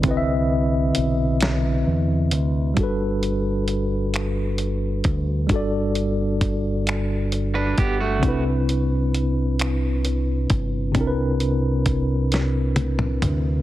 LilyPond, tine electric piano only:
\new Staff \with { instrumentName = "Tine electric piano" } { \time 6/8 \key g \major \tempo 4. = 44 <d c' e' b' ees'' e''>2. | <g d' fis' a' b'>2. | <g d' fis' a' d''>2. | <c c' d' e' b'>2. |
<c c' d' e' bes' b'>2. | }